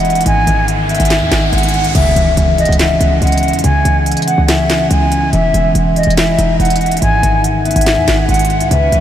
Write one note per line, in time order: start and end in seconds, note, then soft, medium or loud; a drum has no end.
0.00 0.24 E1 loud
0.00 0.31 E3 loud
0.00 0.31 G#3 medium
0.00 0.89 B3 medium
0.00 0.62 C#4 loud
0.00 2.22 D#4 medium
0.00 0.53 E4 loud
0.00 0.23 F#5 medium
0.00 riser medium
0.05 closed hi-hat soft
0.10 closed hi-hat soft
0.15 closed hi-hat medium
0.21 closed hi-hat medium
0.26 0.46 G#1 loud
0.26 2.00 G#2 medium
0.26 0.66 G#5 loud
0.26 closed hi-hat medium
0.47 0.98 G#1 loud
0.47 2.00 D#3 medium
0.47 closed hi-hat medium
0.68 closed hi-hat medium
0.89 1.31 B3 medium
0.89 1.49 E5 medium
0.89 closed hi-hat soft
0.95 closed hi-hat medium
1.00 1.23 G#1 loud
1.00 closed hi-hat medium
1.05 closed hi-hat medium
1.10 snare loud
1.10 clap medium
1.10 closed hi-hat medium
1.21 1.31 D#2 loud
1.31 1.52 G#1 loud
1.31 2.58 B3 medium
1.31 snare loud
1.31 clap medium
1.31 closed hi-hat medium
1.53 1.86 G#1 loud
1.53 2.00 G#3 medium
1.53 1.92 F#5 medium
1.53 closed hi-hat soft
1.58 closed hi-hat medium
1.63 closed hi-hat medium
1.69 closed hi-hat medium
1.74 closed hi-hat soft
1.74 open hi-hat medium
1.84 1.94 B1 loud
1.84 closed hi-hat medium
1.95 2.15 C#2 loud
1.95 3.63 C#3 loud
1.95 2.35 E5 loud
1.95 closed hi-hat medium
1.95 crash loud
1.95 impact medium
2.16 2.36 C#2 loud
2.16 3.69 E3 medium
2.16 closed hi-hat medium
2.37 2.68 C#2 loud
2.37 closed hi-hat medium
2.58 3.01 B3 medium
2.58 2.77 D#5 medium
2.58 closed hi-hat medium
2.65 2.99 C#2 loud
2.65 closed hi-hat medium
2.72 closed hi-hat medium
2.79 4.48 C#4 loud
2.79 3.19 E5 medium
2.79 snare loud
2.79 clap medium
2.79 closed hi-hat medium
3.01 3.21 C#2 loud
3.01 4.27 B3 medium
3.01 closed hi-hat medium
3.22 3.55 C#2 loud
3.22 4.89 G#3 medium
3.22 3.62 F#5 medium
3.22 closed hi-hat soft
3.27 closed hi-hat medium
3.32 closed hi-hat medium
3.38 closed hi-hat medium
3.43 closed hi-hat soft
3.48 closed hi-hat soft
3.53 3.63 E2 loud
3.53 closed hi-hat medium
3.59 closed hi-hat medium
3.64 3.84 C#2 loud
3.64 5.38 C#3 loud
3.64 4.04 G#5 loud
3.64 closed hi-hat medium
3.85 4.16 C#2 loud
3.85 5.32 E3 medium
3.85 closed hi-hat medium
4.06 closed hi-hat medium
4.12 closed hi-hat medium
4.17 closed hi-hat medium
4.22 closed hi-hat medium
4.27 4.69 B3 medium
4.27 4.46 F#5 medium
4.27 closed hi-hat medium
4.38 4.89 C#2 loud
4.48 7.38 C#4 loud
4.48 4.88 E5 medium
4.48 snare loud
4.48 clap medium
4.48 closed hi-hat medium
4.70 6.59 B3 medium
4.70 snare loud
4.70 clap medium
4.70 closed hi-hat medium
4.91 5.31 C#2 loud
4.91 5.38 G#3 medium
4.91 5.30 G#5 medium
4.91 closed hi-hat medium
5.12 closed hi-hat medium
5.33 5.53 E1 loud
5.33 7.07 E3 loud
5.33 5.73 E5 loud
5.33 closed hi-hat medium
5.54 5.74 E1 loud
5.54 7.07 G#3 medium
5.54 closed hi-hat medium
5.75 6.06 E1 loud
5.75 closed hi-hat medium
5.96 6.15 D#5 medium
5.96 closed hi-hat medium
6.03 6.37 E1 loud
6.03 closed hi-hat medium
6.10 closed hi-hat medium
6.17 7.29 E4 loud
6.17 6.57 E5 medium
6.17 snare loud
6.17 clap medium
6.17 closed hi-hat medium
6.39 6.59 E1 loud
6.39 8.98 D#4 medium
6.39 closed hi-hat medium
6.60 7.00 E1 loud
6.60 7.65 B3 medium
6.60 6.99 F#5 medium
6.60 closed hi-hat soft
6.65 closed hi-hat medium
6.70 closed hi-hat medium
6.76 closed hi-hat medium
6.81 closed hi-hat soft
6.86 closed hi-hat soft
6.92 closed hi-hat medium
6.97 closed hi-hat medium
7.02 7.22 G#1 loud
7.02 8.76 G#2 medium
7.02 7.42 G#5 loud
7.02 closed hi-hat medium
7.23 7.74 G#1 loud
7.23 8.76 D#3 medium
7.23 closed hi-hat medium
7.44 closed hi-hat medium
7.65 8.07 B3 medium
7.65 8.25 E5 medium
7.65 closed hi-hat soft
7.71 closed hi-hat medium
7.76 7.99 G#1 loud
7.76 closed hi-hat medium
7.81 closed hi-hat medium
7.86 snare loud
7.86 clap medium
7.86 closed hi-hat medium
7.97 8.07 D#2 loud
8.07 8.28 G#1 loud
8.07 9.00 B3 medium
8.07 snare loud
8.07 clap medium
8.07 closed hi-hat medium
8.29 8.62 G#1 loud
8.29 8.76 G#3 medium
8.29 8.68 F#5 medium
8.29 closed hi-hat soft
8.34 closed hi-hat medium
8.39 closed hi-hat medium
8.45 closed hi-hat medium
8.50 closed hi-hat soft
8.50 open hi-hat medium
8.60 8.71 B1 loud
8.60 closed hi-hat medium
8.71 8.91 C#2 loud
8.71 9.00 C#3 loud
8.71 9.00 E3 medium
8.71 9.00 C#4 medium
8.71 9.00 B4 medium
8.71 9.00 E5 loud
8.71 closed hi-hat medium
8.92 9.00 C#2 loud
8.92 9.00 E3 medium
8.92 closed hi-hat medium